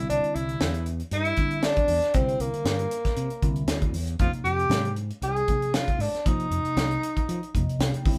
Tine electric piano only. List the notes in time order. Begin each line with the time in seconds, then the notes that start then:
Already playing: D3 G3 C4 E4
1.37 D3 G3 C4 D4
2.14 D3 G3 C4 E4
3.42 D3 G3 C4 E4
4.19 C3 F3 A#3 D#4
5.47 C3 F3 A#3 D#4
6.25 C3 F3 A#3 D#4
7.55 C3 F3 A#3 D#4 D#5
7.80 G5
8.05 D3 G3 C4 E4